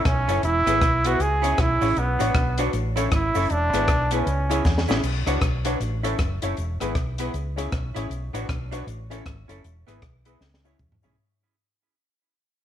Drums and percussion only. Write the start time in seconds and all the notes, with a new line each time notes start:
0.05 kick, cross-stick, closed hi-hat, cabasa
0.29 closed hi-hat, cabasa
0.43 closed hi-hat, cabasa
0.67 cross-stick, closed hi-hat, cabasa
0.81 kick, cross-stick, closed hi-hat, cabasa
1.04 closed hi-hat, cabasa
1.20 closed hi-hat, cabasa
1.44 closed hi-hat, cabasa
1.58 kick, cross-stick, closed hi-hat, cabasa
1.81 open hi-hat, cabasa
1.97 closed hi-hat, cabasa
2.20 closed hi-hat, cabasa
2.35 kick, cross-stick, closed hi-hat, cabasa
2.58 closed hi-hat, cabasa
2.73 closed hi-hat, cabasa
2.97 closed hi-hat, cabasa
3.12 kick, cross-stick, closed hi-hat, cabasa
3.35 open hi-hat, cabasa
3.50 closed hi-hat, cabasa
3.74 cross-stick, closed hi-hat, cabasa
3.88 kick, cross-stick, closed hi-hat, cabasa
4.11 closed hi-hat, cabasa
4.27 closed hi-hat, cabasa
4.51 closed hi-hat, cabasa
4.65 kick, snare, cabasa
4.78 snare
4.88 snare, cabasa
5.03 crash, cabasa
5.27 cross-stick, closed hi-hat, cabasa
5.41 kick, cross-stick, closed hi-hat, cabasa
5.65 closed hi-hat, cabasa
5.81 closed hi-hat, cabasa
6.05 closed hi-hat, cabasa
6.19 kick, cross-stick, closed hi-hat, cabasa
6.42 closed hi-hat, cabasa
6.57 closed hi-hat, cabasa
6.80 cross-stick, closed hi-hat, cabasa
6.95 kick, cross-stick, closed hi-hat, cabasa
7.18 closed hi-hat, cabasa
7.34 closed hi-hat, cabasa
7.58 closed hi-hat, cabasa
7.72 kick, cross-stick, closed hi-hat, cabasa
7.96 closed hi-hat, cabasa
8.11 closed hi-hat, cabasa
8.35 closed hi-hat, cabasa
8.49 kick, cross-stick, closed hi-hat, cabasa
8.72 closed hi-hat, cabasa
8.88 closed hi-hat, cabasa
9.11 closed hi-hat, cabasa
9.26 kick, cross-stick, closed hi-hat, cabasa
9.49 closed hi-hat, cabasa
9.64 closed hi-hat, cabasa
9.88 cross-stick, closed hi-hat, cabasa
10.02 kick, cross-stick, closed hi-hat, cabasa
10.25 closed hi-hat, cabasa
10.41 snare, cabasa
10.54 snare
10.65 cabasa
10.79 kick, mid tom, cabasa
10.92 floor tom
11.03 floor tom, cabasa